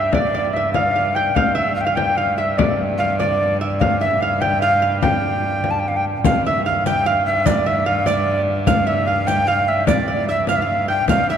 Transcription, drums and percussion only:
0, 0, Header, 1, 3, 480
1, 0, Start_track
1, 0, Tempo, 407332
1, 167, Time_signature, 6, 3, 24, 8
1, 6407, Tempo, 403226
1, 13474, End_track
2, 0, Start_track
2, 0, Title_t, "Frame drum"
2, 148, Note_on_c, 9, 64, 76
2, 266, Note_off_c, 9, 64, 0
2, 877, Note_on_c, 9, 64, 71
2, 994, Note_off_c, 9, 64, 0
2, 1605, Note_on_c, 9, 64, 84
2, 1723, Note_off_c, 9, 64, 0
2, 2326, Note_on_c, 9, 64, 70
2, 2444, Note_off_c, 9, 64, 0
2, 3050, Note_on_c, 9, 64, 89
2, 3168, Note_off_c, 9, 64, 0
2, 3773, Note_on_c, 9, 64, 67
2, 3891, Note_off_c, 9, 64, 0
2, 4491, Note_on_c, 9, 64, 76
2, 4609, Note_off_c, 9, 64, 0
2, 5203, Note_on_c, 9, 64, 64
2, 5321, Note_off_c, 9, 64, 0
2, 5922, Note_on_c, 9, 64, 88
2, 6040, Note_off_c, 9, 64, 0
2, 6404, Note_on_c, 9, 64, 26
2, 6523, Note_off_c, 9, 64, 0
2, 6647, Note_on_c, 9, 64, 66
2, 6766, Note_off_c, 9, 64, 0
2, 7369, Note_on_c, 9, 64, 103
2, 7488, Note_off_c, 9, 64, 0
2, 8101, Note_on_c, 9, 64, 68
2, 8220, Note_off_c, 9, 64, 0
2, 8816, Note_on_c, 9, 64, 79
2, 8935, Note_off_c, 9, 64, 0
2, 9529, Note_on_c, 9, 64, 66
2, 9648, Note_off_c, 9, 64, 0
2, 10255, Note_on_c, 9, 64, 80
2, 10374, Note_off_c, 9, 64, 0
2, 10975, Note_on_c, 9, 64, 66
2, 11094, Note_off_c, 9, 64, 0
2, 11685, Note_on_c, 9, 64, 83
2, 11804, Note_off_c, 9, 64, 0
2, 12168, Note_on_c, 9, 64, 29
2, 12287, Note_off_c, 9, 64, 0
2, 12401, Note_on_c, 9, 64, 66
2, 12520, Note_off_c, 9, 64, 0
2, 13123, Note_on_c, 9, 64, 81
2, 13242, Note_off_c, 9, 64, 0
2, 13474, End_track
3, 0, Start_track
3, 0, Title_t, "Riq"
3, 7377, Note_on_c, 9, 54, 62
3, 7496, Note_off_c, 9, 54, 0
3, 8101, Note_on_c, 9, 54, 50
3, 8220, Note_off_c, 9, 54, 0
3, 8822, Note_on_c, 9, 54, 74
3, 8941, Note_off_c, 9, 54, 0
3, 9544, Note_on_c, 9, 54, 54
3, 9663, Note_off_c, 9, 54, 0
3, 10261, Note_on_c, 9, 54, 67
3, 10380, Note_off_c, 9, 54, 0
3, 10981, Note_on_c, 9, 54, 55
3, 11100, Note_off_c, 9, 54, 0
3, 11701, Note_on_c, 9, 54, 66
3, 11820, Note_off_c, 9, 54, 0
3, 12183, Note_on_c, 9, 54, 22
3, 12302, Note_off_c, 9, 54, 0
3, 12419, Note_on_c, 9, 54, 52
3, 12538, Note_off_c, 9, 54, 0
3, 13139, Note_on_c, 9, 54, 66
3, 13258, Note_off_c, 9, 54, 0
3, 13474, End_track
0, 0, End_of_file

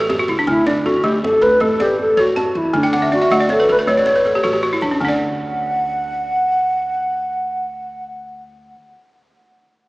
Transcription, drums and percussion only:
0, 0, Header, 1, 2, 480
1, 0, Start_track
1, 0, Key_signature, 2, "major"
1, 0, Tempo, 378072
1, 594, Time_signature, 12, 3, 24, 8
1, 12550, End_track
2, 0, Start_track
2, 0, Title_t, "Djembe"
2, 125, Note_on_c, 9, 62, 67
2, 125, Note_on_c, 9, 63, 72
2, 125, Note_on_c, 9, 64, 70
2, 252, Note_off_c, 9, 62, 0
2, 252, Note_off_c, 9, 63, 0
2, 252, Note_off_c, 9, 64, 0
2, 482, Note_on_c, 9, 63, 59
2, 602, Note_on_c, 9, 64, 76
2, 609, Note_off_c, 9, 63, 0
2, 722, Note_on_c, 9, 62, 24
2, 729, Note_off_c, 9, 64, 0
2, 845, Note_off_c, 9, 62, 0
2, 845, Note_on_c, 9, 62, 73
2, 845, Note_on_c, 9, 63, 71
2, 961, Note_off_c, 9, 62, 0
2, 961, Note_on_c, 9, 62, 24
2, 972, Note_off_c, 9, 63, 0
2, 1088, Note_off_c, 9, 62, 0
2, 1088, Note_on_c, 9, 64, 74
2, 1207, Note_on_c, 9, 62, 23
2, 1207, Note_on_c, 9, 63, 53
2, 1214, Note_off_c, 9, 64, 0
2, 1334, Note_off_c, 9, 62, 0
2, 1334, Note_off_c, 9, 63, 0
2, 1578, Note_on_c, 9, 62, 72
2, 1578, Note_on_c, 9, 63, 71
2, 1578, Note_on_c, 9, 64, 68
2, 1705, Note_off_c, 9, 62, 0
2, 1705, Note_off_c, 9, 63, 0
2, 1705, Note_off_c, 9, 64, 0
2, 1819, Note_on_c, 9, 62, 21
2, 1935, Note_on_c, 9, 63, 55
2, 1946, Note_off_c, 9, 62, 0
2, 2054, Note_on_c, 9, 64, 73
2, 2062, Note_off_c, 9, 63, 0
2, 2181, Note_off_c, 9, 64, 0
2, 2285, Note_on_c, 9, 62, 65
2, 2285, Note_on_c, 9, 63, 68
2, 2412, Note_off_c, 9, 62, 0
2, 2412, Note_off_c, 9, 63, 0
2, 2529, Note_on_c, 9, 64, 64
2, 2656, Note_off_c, 9, 64, 0
2, 3009, Note_on_c, 9, 62, 59
2, 3009, Note_on_c, 9, 63, 61
2, 3009, Note_on_c, 9, 64, 62
2, 3136, Note_off_c, 9, 62, 0
2, 3136, Note_off_c, 9, 63, 0
2, 3136, Note_off_c, 9, 64, 0
2, 3364, Note_on_c, 9, 63, 47
2, 3484, Note_on_c, 9, 62, 20
2, 3484, Note_on_c, 9, 64, 60
2, 3491, Note_off_c, 9, 63, 0
2, 3604, Note_off_c, 9, 62, 0
2, 3604, Note_on_c, 9, 62, 20
2, 3611, Note_off_c, 9, 64, 0
2, 3727, Note_off_c, 9, 62, 0
2, 3727, Note_on_c, 9, 62, 59
2, 3727, Note_on_c, 9, 63, 61
2, 3854, Note_off_c, 9, 62, 0
2, 3854, Note_off_c, 9, 63, 0
2, 3856, Note_on_c, 9, 62, 20
2, 3964, Note_on_c, 9, 64, 67
2, 3983, Note_off_c, 9, 62, 0
2, 4080, Note_on_c, 9, 63, 48
2, 4091, Note_off_c, 9, 64, 0
2, 4191, Note_on_c, 9, 62, 20
2, 4207, Note_off_c, 9, 63, 0
2, 4315, Note_off_c, 9, 62, 0
2, 4315, Note_on_c, 9, 62, 21
2, 4431, Note_off_c, 9, 62, 0
2, 4431, Note_on_c, 9, 62, 65
2, 4431, Note_on_c, 9, 63, 67
2, 4431, Note_on_c, 9, 64, 65
2, 4558, Note_off_c, 9, 62, 0
2, 4558, Note_off_c, 9, 63, 0
2, 4558, Note_off_c, 9, 64, 0
2, 4801, Note_on_c, 9, 63, 51
2, 4912, Note_on_c, 9, 64, 66
2, 4928, Note_off_c, 9, 63, 0
2, 5036, Note_on_c, 9, 62, 22
2, 5039, Note_off_c, 9, 64, 0
2, 5152, Note_off_c, 9, 62, 0
2, 5152, Note_on_c, 9, 62, 68
2, 5152, Note_on_c, 9, 63, 65
2, 5279, Note_off_c, 9, 62, 0
2, 5279, Note_off_c, 9, 63, 0
2, 5388, Note_on_c, 9, 62, 20
2, 5388, Note_on_c, 9, 64, 66
2, 5515, Note_off_c, 9, 62, 0
2, 5515, Note_off_c, 9, 64, 0
2, 5519, Note_on_c, 9, 62, 21
2, 5519, Note_on_c, 9, 63, 53
2, 5638, Note_on_c, 9, 64, 40
2, 5646, Note_off_c, 9, 62, 0
2, 5646, Note_off_c, 9, 63, 0
2, 5765, Note_off_c, 9, 64, 0
2, 5872, Note_on_c, 9, 62, 47
2, 5999, Note_off_c, 9, 62, 0
2, 6110, Note_on_c, 9, 62, 54
2, 6237, Note_off_c, 9, 62, 0
2, 6355, Note_on_c, 9, 64, 82
2, 6482, Note_off_c, 9, 64, 0
2, 12550, End_track
0, 0, End_of_file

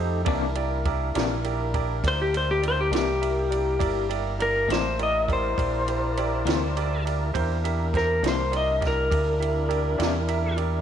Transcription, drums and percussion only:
0, 0, Header, 1, 2, 480
1, 0, Start_track
1, 0, Tempo, 589971
1, 212, Time_signature, 12, 3, 24, 8
1, 8798, End_track
2, 0, Start_track
2, 0, Title_t, "Drums"
2, 210, Note_on_c, 9, 51, 82
2, 216, Note_on_c, 9, 36, 115
2, 292, Note_off_c, 9, 51, 0
2, 297, Note_off_c, 9, 36, 0
2, 450, Note_on_c, 9, 51, 58
2, 532, Note_off_c, 9, 51, 0
2, 694, Note_on_c, 9, 51, 60
2, 696, Note_on_c, 9, 36, 76
2, 776, Note_off_c, 9, 51, 0
2, 777, Note_off_c, 9, 36, 0
2, 937, Note_on_c, 9, 51, 78
2, 956, Note_on_c, 9, 38, 95
2, 1018, Note_off_c, 9, 51, 0
2, 1038, Note_off_c, 9, 38, 0
2, 1175, Note_on_c, 9, 51, 54
2, 1256, Note_off_c, 9, 51, 0
2, 1416, Note_on_c, 9, 36, 70
2, 1416, Note_on_c, 9, 51, 58
2, 1497, Note_off_c, 9, 36, 0
2, 1497, Note_off_c, 9, 51, 0
2, 1658, Note_on_c, 9, 36, 77
2, 1661, Note_on_c, 9, 51, 85
2, 1739, Note_off_c, 9, 36, 0
2, 1742, Note_off_c, 9, 51, 0
2, 1904, Note_on_c, 9, 51, 64
2, 1986, Note_off_c, 9, 51, 0
2, 2142, Note_on_c, 9, 51, 62
2, 2223, Note_off_c, 9, 51, 0
2, 2381, Note_on_c, 9, 51, 84
2, 2400, Note_on_c, 9, 38, 111
2, 2462, Note_off_c, 9, 51, 0
2, 2482, Note_off_c, 9, 38, 0
2, 2625, Note_on_c, 9, 51, 61
2, 2706, Note_off_c, 9, 51, 0
2, 2863, Note_on_c, 9, 51, 64
2, 2944, Note_off_c, 9, 51, 0
2, 3095, Note_on_c, 9, 36, 111
2, 3100, Note_on_c, 9, 51, 87
2, 3177, Note_off_c, 9, 36, 0
2, 3182, Note_off_c, 9, 51, 0
2, 3339, Note_on_c, 9, 51, 65
2, 3421, Note_off_c, 9, 51, 0
2, 3581, Note_on_c, 9, 51, 60
2, 3663, Note_off_c, 9, 51, 0
2, 3825, Note_on_c, 9, 51, 73
2, 3845, Note_on_c, 9, 38, 99
2, 3906, Note_off_c, 9, 51, 0
2, 3926, Note_off_c, 9, 38, 0
2, 4061, Note_on_c, 9, 51, 53
2, 4142, Note_off_c, 9, 51, 0
2, 4299, Note_on_c, 9, 36, 70
2, 4307, Note_on_c, 9, 51, 57
2, 4380, Note_off_c, 9, 36, 0
2, 4388, Note_off_c, 9, 51, 0
2, 4538, Note_on_c, 9, 36, 78
2, 4545, Note_on_c, 9, 51, 73
2, 4620, Note_off_c, 9, 36, 0
2, 4627, Note_off_c, 9, 51, 0
2, 4782, Note_on_c, 9, 51, 58
2, 4863, Note_off_c, 9, 51, 0
2, 5022, Note_on_c, 9, 51, 59
2, 5104, Note_off_c, 9, 51, 0
2, 5260, Note_on_c, 9, 51, 81
2, 5280, Note_on_c, 9, 38, 111
2, 5342, Note_off_c, 9, 51, 0
2, 5361, Note_off_c, 9, 38, 0
2, 5506, Note_on_c, 9, 51, 59
2, 5587, Note_off_c, 9, 51, 0
2, 5751, Note_on_c, 9, 51, 58
2, 5832, Note_off_c, 9, 51, 0
2, 5980, Note_on_c, 9, 36, 110
2, 5982, Note_on_c, 9, 51, 84
2, 6061, Note_off_c, 9, 36, 0
2, 6063, Note_off_c, 9, 51, 0
2, 6224, Note_on_c, 9, 51, 65
2, 6305, Note_off_c, 9, 51, 0
2, 6460, Note_on_c, 9, 36, 80
2, 6467, Note_on_c, 9, 51, 60
2, 6487, Note_on_c, 9, 38, 33
2, 6542, Note_off_c, 9, 36, 0
2, 6548, Note_off_c, 9, 51, 0
2, 6568, Note_off_c, 9, 38, 0
2, 6702, Note_on_c, 9, 51, 83
2, 6722, Note_on_c, 9, 38, 109
2, 6784, Note_off_c, 9, 51, 0
2, 6803, Note_off_c, 9, 38, 0
2, 6940, Note_on_c, 9, 51, 64
2, 7021, Note_off_c, 9, 51, 0
2, 7176, Note_on_c, 9, 51, 57
2, 7177, Note_on_c, 9, 36, 74
2, 7195, Note_on_c, 9, 38, 28
2, 7257, Note_off_c, 9, 51, 0
2, 7258, Note_off_c, 9, 36, 0
2, 7277, Note_off_c, 9, 38, 0
2, 7416, Note_on_c, 9, 36, 74
2, 7419, Note_on_c, 9, 51, 76
2, 7497, Note_off_c, 9, 36, 0
2, 7501, Note_off_c, 9, 51, 0
2, 7666, Note_on_c, 9, 51, 58
2, 7747, Note_off_c, 9, 51, 0
2, 7896, Note_on_c, 9, 51, 53
2, 7977, Note_off_c, 9, 51, 0
2, 8132, Note_on_c, 9, 51, 75
2, 8152, Note_on_c, 9, 38, 96
2, 8214, Note_off_c, 9, 51, 0
2, 8233, Note_off_c, 9, 38, 0
2, 8367, Note_on_c, 9, 51, 57
2, 8449, Note_off_c, 9, 51, 0
2, 8605, Note_on_c, 9, 51, 52
2, 8686, Note_off_c, 9, 51, 0
2, 8798, End_track
0, 0, End_of_file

